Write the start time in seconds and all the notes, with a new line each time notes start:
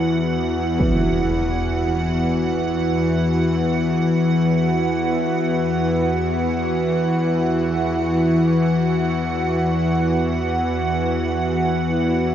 Already playing: E2 E3 B3 F#4 F#5
0.80 F#5, impact